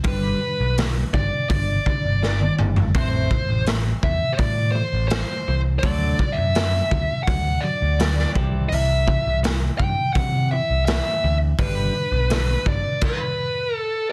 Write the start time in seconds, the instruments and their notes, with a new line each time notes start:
0.04 picked electric bass G1, clean electric guitar G2 D3 G3, lead electric guitar B4, kick, open hi-hat
0.41 clean electric guitar G2 D3
0.60 picked electric bass B1
0.78 clean electric guitar G2 D3, snare, open hi-hat
1.14 picked electric bass G1, clean electric guitar G2 D3, lead electric guitar D5, kick
1.50 picked electric bass G1, clean electric guitar G2 D3, lead electric guitar D5, kick, open hi-hat
1.86 clean electric guitar G2 D3, kick
2.05 picked electric bass G1
2.22 clean electric guitar G2 D3, snare
2.41 high tom
2.59 picked electric bass G1, clean electric guitar G2 D3, mid tom
2.76 floor tom
2.94 picked electric bass A1, clean electric guitar A2 E3 C4, lead electric guitar C5, kick, open hi-hat
3.31 clean electric guitar A2 E3, kick
3.49 picked electric bass A1
3.66 clean electric guitar A2 E3, snare, open hi-hat
4.03 picked electric bass E2, clean electric guitar A2 E3, lead electric guitar E5, kick
4.33 lead electric guitar C5
4.38 picked electric bass A2, clean electric guitar A2 E3, lead electric guitar D5, kick, open hi-hat
4.72 clean electric guitar A2 E3, lead electric guitar C5
4.93 picked electric bass A1
5.08 clean electric guitar A2 E3, lead electric guitar C5, snare, open hi-hat
5.48 picked electric bass C2, clean electric guitar A2 E3
5.79 lead electric guitar D5
5.83 picked electric bass D2, clean electric guitar D3 F#3 A3, kick, open hi-hat
6.19 clean electric guitar D3 F#3, kick
6.32 lead electric guitar E5
6.38 picked electric bass F#2
6.55 clean electric guitar D3 F#3, snare, open hi-hat
6.91 picked electric bass D2, clean electric guitar D3 F#3, kick
7.23 lead electric guitar F#5
7.27 picked electric bass D2, clean electric guitar D3 F#3, kick, open hi-hat
7.61 clean electric guitar D3 F#3, lead electric guitar D5
7.82 picked electric bass D2
7.99 clean electric guitar D3 F#3, snare, open hi-hat
8.19 snare
8.35 picked electric bass C2, clean electric guitar C3 E3 G3, kick
8.69 picked electric bass C2, clean electric guitar C3 E3, lead electric guitar E5, open hi-hat
9.07 clean electric guitar C3 E3, kick
9.26 picked electric bass C2
9.43 clean electric guitar C3 E3, snare, open hi-hat
9.78 picked electric bass G2, clean electric guitar C3 E3, lead electric guitar G5, kick
10.13 picked electric bass C3, clean electric guitar C3 E3, lead electric guitar F#5, kick, open hi-hat
10.51 clean electric guitar C3 E3, lead electric guitar E5
10.70 picked electric bass C2
10.85 clean electric guitar C3 E3, lead electric guitar E5, snare, open hi-hat
11.24 picked electric bass D2, clean electric guitar C3 E3
11.59 picked electric bass G1, clean electric guitar G2 D3 G3, lead electric guitar B4, kick, open hi-hat
11.95 clean electric guitar G2 D3
12.12 picked electric bass B1
12.30 clean electric guitar G2 D3, snare, open hi-hat
12.66 picked electric bass G1, clean electric guitar G2 D3, lead electric guitar D5, kick
13.01 lead electric guitar B4, kick, crash
13.76 lead electric guitar A4